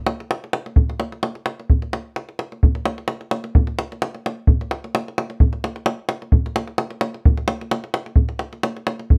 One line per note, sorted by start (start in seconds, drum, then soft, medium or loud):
0.07 davul high medium
0.20 davul high soft
0.31 davul high medium
0.44 davul high soft
0.53 davul high medium
0.66 davul high soft
0.76 davul low medium
0.90 davul high soft
1.00 davul high medium
1.12 davul high soft
1.23 davul high medium
1.35 davul high soft
1.46 davul high medium
1.60 davul high soft
1.70 davul low medium
1.82 davul high soft
1.93 davul high soft
2.16 davul high soft
2.29 davul high soft
2.39 davul high soft
2.52 davul high soft
2.63 davul low medium
2.75 davul high soft
2.85 davul high medium
2.98 davul high soft
3.08 davul high medium
3.21 davul high soft
3.31 davul high medium
3.44 davul high soft
3.55 davul low loud
3.67 davul high soft
3.79 davul high medium
3.92 davul high soft
4.02 davul high medium
4.15 davul high soft
4.26 davul high medium
4.47 davul low medium
4.61 davul high soft
4.71 davul high medium
4.84 davul high soft
4.95 davul high medium
5.08 davul high soft
5.18 davul high medium
5.30 davul high soft
5.40 davul low medium
5.53 davul high soft
5.64 davul high soft
5.76 davul high soft
5.86 davul high medium
6.09 davul high medium
6.22 davul high soft
6.32 davul low medium
6.46 davul high soft
6.56 davul high medium
6.68 davul high soft
6.78 davul high medium
6.90 davul high soft
7.01 davul high medium
7.14 davul high soft
7.25 davul low loud
7.37 davul high soft
7.48 davul high medium
7.61 davul high soft
7.71 davul high medium
7.84 davul high soft
7.94 davul high medium
8.06 davul high soft
8.16 davul low medium
8.29 davul high soft
8.39 davul high soft
8.53 davul high soft
8.63 davul high medium
8.77 davul high soft
8.87 davul high medium
8.99 davul high soft
9.10 davul low medium